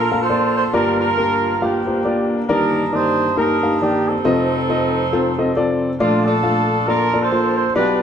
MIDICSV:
0, 0, Header, 1, 3, 480
1, 0, Start_track
1, 0, Key_signature, -2, "major"
1, 0, Tempo, 437956
1, 811, Time_signature, 4, 2, 24, 8
1, 8794, End_track
2, 0, Start_track
2, 0, Title_t, "Horn section"
2, 0, Program_c, 0, 61
2, 0, Note_on_c, 0, 62, 68
2, 0, Note_on_c, 0, 65, 66
2, 0, Note_on_c, 0, 70, 89
2, 223, Note_off_c, 0, 65, 0
2, 229, Note_off_c, 0, 70, 0
2, 232, Note_on_c, 0, 72, 97
2, 233, Note_on_c, 0, 69, 73
2, 237, Note_on_c, 0, 65, 71
2, 598, Note_off_c, 0, 72, 0
2, 611, Note_on_c, 0, 72, 89
2, 701, Note_off_c, 0, 72, 0
2, 771, Note_off_c, 0, 62, 0
2, 772, Note_off_c, 0, 69, 0
2, 774, Note_off_c, 0, 65, 0
2, 810, Note_on_c, 0, 70, 93
2, 813, Note_on_c, 0, 62, 70
2, 813, Note_on_c, 0, 65, 65
2, 1072, Note_off_c, 0, 70, 0
2, 1080, Note_off_c, 0, 65, 0
2, 1083, Note_off_c, 0, 62, 0
2, 1093, Note_on_c, 0, 65, 68
2, 1096, Note_on_c, 0, 62, 67
2, 1098, Note_on_c, 0, 70, 98
2, 1732, Note_off_c, 0, 70, 0
2, 1765, Note_off_c, 0, 62, 0
2, 1778, Note_on_c, 0, 62, 49
2, 1780, Note_on_c, 0, 58, 53
2, 1781, Note_on_c, 0, 67, 76
2, 2011, Note_off_c, 0, 65, 0
2, 2539, Note_off_c, 0, 67, 0
2, 2693, Note_off_c, 0, 62, 0
2, 2694, Note_off_c, 0, 58, 0
2, 2732, Note_on_c, 0, 70, 91
2, 2734, Note_on_c, 0, 63, 65
2, 2738, Note_on_c, 0, 62, 70
2, 3180, Note_off_c, 0, 70, 0
2, 3208, Note_off_c, 0, 63, 0
2, 3217, Note_on_c, 0, 72, 100
2, 3221, Note_on_c, 0, 63, 71
2, 3653, Note_off_c, 0, 62, 0
2, 3695, Note_off_c, 0, 63, 0
2, 3697, Note_off_c, 0, 72, 0
2, 3706, Note_on_c, 0, 62, 69
2, 3707, Note_on_c, 0, 70, 86
2, 3708, Note_on_c, 0, 63, 62
2, 4148, Note_off_c, 0, 70, 0
2, 4182, Note_on_c, 0, 67, 81
2, 4453, Note_off_c, 0, 63, 0
2, 4460, Note_off_c, 0, 67, 0
2, 4460, Note_on_c, 0, 69, 89
2, 4466, Note_on_c, 0, 60, 68
2, 4466, Note_on_c, 0, 63, 65
2, 4617, Note_off_c, 0, 62, 0
2, 6337, Note_off_c, 0, 60, 0
2, 6337, Note_off_c, 0, 63, 0
2, 6378, Note_off_c, 0, 69, 0
2, 6581, Note_on_c, 0, 65, 80
2, 6584, Note_on_c, 0, 57, 57
2, 6585, Note_on_c, 0, 62, 59
2, 6839, Note_off_c, 0, 65, 0
2, 6843, Note_off_c, 0, 62, 0
2, 6848, Note_on_c, 0, 69, 94
2, 6853, Note_on_c, 0, 65, 66
2, 6856, Note_on_c, 0, 62, 67
2, 7495, Note_off_c, 0, 57, 0
2, 7526, Note_off_c, 0, 62, 0
2, 7527, Note_off_c, 0, 65, 0
2, 7530, Note_off_c, 0, 69, 0
2, 7531, Note_on_c, 0, 70, 89
2, 7540, Note_on_c, 0, 62, 66
2, 7540, Note_on_c, 0, 65, 63
2, 7902, Note_off_c, 0, 65, 0
2, 7909, Note_on_c, 0, 72, 97
2, 7913, Note_off_c, 0, 70, 0
2, 7914, Note_on_c, 0, 69, 69
2, 7915, Note_on_c, 0, 65, 71
2, 8279, Note_off_c, 0, 72, 0
2, 8292, Note_on_c, 0, 72, 94
2, 8451, Note_off_c, 0, 62, 0
2, 8452, Note_off_c, 0, 69, 0
2, 8453, Note_off_c, 0, 65, 0
2, 8478, Note_off_c, 0, 72, 0
2, 8492, Note_on_c, 0, 71, 85
2, 8498, Note_on_c, 0, 65, 64
2, 8501, Note_on_c, 0, 62, 65
2, 8753, Note_off_c, 0, 71, 0
2, 8766, Note_off_c, 0, 65, 0
2, 8767, Note_off_c, 0, 62, 0
2, 8794, End_track
3, 0, Start_track
3, 0, Title_t, "Upright piano"
3, 0, Program_c, 1, 0
3, 0, Note_on_c, 1, 34, 57
3, 0, Note_on_c, 1, 46, 60
3, 125, Note_on_c, 1, 69, 59
3, 126, Note_on_c, 1, 65, 56
3, 128, Note_on_c, 1, 58, 61
3, 129, Note_on_c, 1, 77, 69
3, 265, Note_off_c, 1, 65, 0
3, 265, Note_off_c, 1, 69, 0
3, 266, Note_off_c, 1, 58, 0
3, 267, Note_off_c, 1, 77, 0
3, 323, Note_on_c, 1, 65, 59
3, 323, Note_on_c, 1, 69, 63
3, 324, Note_on_c, 1, 74, 74
3, 325, Note_on_c, 1, 58, 68
3, 683, Note_off_c, 1, 69, 0
3, 684, Note_off_c, 1, 58, 0
3, 684, Note_off_c, 1, 65, 0
3, 684, Note_off_c, 1, 74, 0
3, 766, Note_off_c, 1, 34, 0
3, 766, Note_off_c, 1, 46, 0
3, 802, Note_on_c, 1, 43, 58
3, 803, Note_on_c, 1, 67, 83
3, 804, Note_on_c, 1, 65, 79
3, 805, Note_on_c, 1, 58, 90
3, 806, Note_on_c, 1, 31, 60
3, 807, Note_on_c, 1, 74, 94
3, 1164, Note_off_c, 1, 65, 0
3, 1164, Note_off_c, 1, 67, 0
3, 1165, Note_off_c, 1, 58, 0
3, 1166, Note_off_c, 1, 74, 0
3, 1286, Note_on_c, 1, 58, 66
3, 1288, Note_on_c, 1, 67, 62
3, 1289, Note_on_c, 1, 65, 61
3, 1292, Note_on_c, 1, 70, 72
3, 1646, Note_off_c, 1, 58, 0
3, 1647, Note_off_c, 1, 65, 0
3, 1647, Note_off_c, 1, 67, 0
3, 1649, Note_off_c, 1, 70, 0
3, 1772, Note_on_c, 1, 67, 64
3, 1776, Note_on_c, 1, 58, 66
3, 1777, Note_on_c, 1, 65, 67
3, 1777, Note_on_c, 1, 77, 82
3, 1967, Note_off_c, 1, 67, 0
3, 1968, Note_off_c, 1, 58, 0
3, 1969, Note_off_c, 1, 65, 0
3, 1969, Note_off_c, 1, 77, 0
3, 2046, Note_on_c, 1, 67, 52
3, 2047, Note_on_c, 1, 65, 58
3, 2048, Note_on_c, 1, 58, 60
3, 2050, Note_on_c, 1, 72, 68
3, 2188, Note_off_c, 1, 58, 0
3, 2188, Note_off_c, 1, 65, 0
3, 2188, Note_off_c, 1, 67, 0
3, 2190, Note_off_c, 1, 72, 0
3, 2244, Note_on_c, 1, 58, 71
3, 2244, Note_on_c, 1, 67, 65
3, 2246, Note_on_c, 1, 74, 70
3, 2247, Note_on_c, 1, 65, 63
3, 2605, Note_off_c, 1, 58, 0
3, 2605, Note_off_c, 1, 67, 0
3, 2606, Note_off_c, 1, 74, 0
3, 2607, Note_off_c, 1, 65, 0
3, 2686, Note_off_c, 1, 43, 0
3, 2688, Note_off_c, 1, 31, 0
3, 2730, Note_on_c, 1, 31, 57
3, 2730, Note_on_c, 1, 43, 60
3, 2730, Note_on_c, 1, 58, 84
3, 2732, Note_on_c, 1, 74, 98
3, 2733, Note_on_c, 1, 67, 77
3, 2734, Note_on_c, 1, 51, 84
3, 3089, Note_off_c, 1, 58, 0
3, 3090, Note_off_c, 1, 67, 0
3, 3090, Note_off_c, 1, 74, 0
3, 3091, Note_off_c, 1, 51, 0
3, 3205, Note_on_c, 1, 58, 67
3, 3206, Note_on_c, 1, 51, 57
3, 3208, Note_on_c, 1, 67, 62
3, 3208, Note_on_c, 1, 74, 75
3, 3567, Note_off_c, 1, 51, 0
3, 3567, Note_off_c, 1, 58, 0
3, 3568, Note_off_c, 1, 67, 0
3, 3568, Note_off_c, 1, 74, 0
3, 3696, Note_on_c, 1, 58, 74
3, 3696, Note_on_c, 1, 63, 64
3, 3698, Note_on_c, 1, 67, 66
3, 3701, Note_on_c, 1, 70, 78
3, 3889, Note_off_c, 1, 58, 0
3, 3890, Note_off_c, 1, 63, 0
3, 3890, Note_off_c, 1, 67, 0
3, 3892, Note_off_c, 1, 70, 0
3, 3976, Note_on_c, 1, 58, 61
3, 3979, Note_on_c, 1, 67, 54
3, 3982, Note_on_c, 1, 63, 58
3, 3982, Note_on_c, 1, 77, 71
3, 4114, Note_off_c, 1, 58, 0
3, 4115, Note_off_c, 1, 67, 0
3, 4116, Note_off_c, 1, 63, 0
3, 4116, Note_off_c, 1, 77, 0
3, 4179, Note_on_c, 1, 58, 65
3, 4185, Note_on_c, 1, 51, 62
3, 4186, Note_on_c, 1, 67, 60
3, 4188, Note_on_c, 1, 74, 73
3, 4534, Note_off_c, 1, 58, 0
3, 4537, Note_off_c, 1, 51, 0
3, 4537, Note_off_c, 1, 67, 0
3, 4538, Note_off_c, 1, 74, 0
3, 4610, Note_off_c, 1, 31, 0
3, 4610, Note_off_c, 1, 43, 0
3, 4653, Note_on_c, 1, 69, 76
3, 4654, Note_on_c, 1, 65, 83
3, 4656, Note_on_c, 1, 41, 57
3, 4657, Note_on_c, 1, 60, 95
3, 4657, Note_on_c, 1, 75, 95
3, 4658, Note_on_c, 1, 29, 61
3, 5010, Note_off_c, 1, 69, 0
3, 5011, Note_off_c, 1, 65, 0
3, 5012, Note_off_c, 1, 60, 0
3, 5013, Note_off_c, 1, 75, 0
3, 5142, Note_on_c, 1, 65, 71
3, 5143, Note_on_c, 1, 60, 81
3, 5146, Note_on_c, 1, 69, 70
3, 5149, Note_on_c, 1, 75, 86
3, 5495, Note_off_c, 1, 60, 0
3, 5495, Note_off_c, 1, 65, 0
3, 5497, Note_off_c, 1, 69, 0
3, 5498, Note_off_c, 1, 75, 0
3, 5620, Note_on_c, 1, 65, 78
3, 5621, Note_on_c, 1, 60, 83
3, 5621, Note_on_c, 1, 69, 75
3, 5624, Note_on_c, 1, 72, 92
3, 5812, Note_off_c, 1, 60, 0
3, 5812, Note_off_c, 1, 65, 0
3, 5812, Note_off_c, 1, 69, 0
3, 5813, Note_off_c, 1, 72, 0
3, 5899, Note_on_c, 1, 60, 72
3, 5901, Note_on_c, 1, 65, 67
3, 5902, Note_on_c, 1, 69, 66
3, 5905, Note_on_c, 1, 75, 77
3, 6035, Note_off_c, 1, 60, 0
3, 6036, Note_off_c, 1, 65, 0
3, 6036, Note_off_c, 1, 69, 0
3, 6038, Note_off_c, 1, 75, 0
3, 6096, Note_on_c, 1, 60, 78
3, 6099, Note_on_c, 1, 69, 73
3, 6100, Note_on_c, 1, 65, 74
3, 6102, Note_on_c, 1, 74, 84
3, 6451, Note_off_c, 1, 60, 0
3, 6453, Note_off_c, 1, 69, 0
3, 6454, Note_off_c, 1, 65, 0
3, 6454, Note_off_c, 1, 74, 0
3, 6531, Note_off_c, 1, 41, 0
3, 6533, Note_off_c, 1, 29, 0
3, 6579, Note_on_c, 1, 74, 97
3, 6580, Note_on_c, 1, 46, 63
3, 6581, Note_on_c, 1, 57, 87
3, 6581, Note_on_c, 1, 65, 81
3, 6581, Note_on_c, 1, 69, 78
3, 6582, Note_on_c, 1, 34, 62
3, 6933, Note_off_c, 1, 74, 0
3, 6934, Note_off_c, 1, 57, 0
3, 6934, Note_off_c, 1, 65, 0
3, 6934, Note_off_c, 1, 69, 0
3, 7049, Note_on_c, 1, 69, 59
3, 7050, Note_on_c, 1, 65, 59
3, 7052, Note_on_c, 1, 57, 64
3, 7052, Note_on_c, 1, 77, 72
3, 7408, Note_off_c, 1, 65, 0
3, 7408, Note_off_c, 1, 69, 0
3, 7409, Note_off_c, 1, 57, 0
3, 7409, Note_off_c, 1, 77, 0
3, 7537, Note_on_c, 1, 58, 67
3, 7540, Note_on_c, 1, 65, 66
3, 7541, Note_on_c, 1, 69, 66
3, 7545, Note_on_c, 1, 74, 73
3, 7729, Note_off_c, 1, 58, 0
3, 7730, Note_off_c, 1, 65, 0
3, 7731, Note_off_c, 1, 69, 0
3, 7733, Note_off_c, 1, 74, 0
3, 7818, Note_on_c, 1, 65, 59
3, 7819, Note_on_c, 1, 58, 59
3, 7821, Note_on_c, 1, 69, 56
3, 7822, Note_on_c, 1, 74, 70
3, 7953, Note_off_c, 1, 65, 0
3, 7954, Note_off_c, 1, 58, 0
3, 7955, Note_off_c, 1, 69, 0
3, 7955, Note_off_c, 1, 74, 0
3, 8021, Note_on_c, 1, 58, 68
3, 8021, Note_on_c, 1, 72, 74
3, 8023, Note_on_c, 1, 65, 60
3, 8024, Note_on_c, 1, 69, 58
3, 8372, Note_off_c, 1, 58, 0
3, 8373, Note_off_c, 1, 65, 0
3, 8373, Note_off_c, 1, 72, 0
3, 8374, Note_off_c, 1, 69, 0
3, 8451, Note_off_c, 1, 46, 0
3, 8452, Note_off_c, 1, 34, 0
3, 8500, Note_on_c, 1, 59, 90
3, 8502, Note_on_c, 1, 74, 99
3, 8503, Note_on_c, 1, 35, 59
3, 8503, Note_on_c, 1, 47, 58
3, 8503, Note_on_c, 1, 67, 84
3, 8504, Note_on_c, 1, 65, 81
3, 8794, Note_off_c, 1, 35, 0
3, 8794, Note_off_c, 1, 47, 0
3, 8794, Note_off_c, 1, 59, 0
3, 8794, Note_off_c, 1, 65, 0
3, 8794, Note_off_c, 1, 67, 0
3, 8794, Note_off_c, 1, 74, 0
3, 8794, End_track
0, 0, End_of_file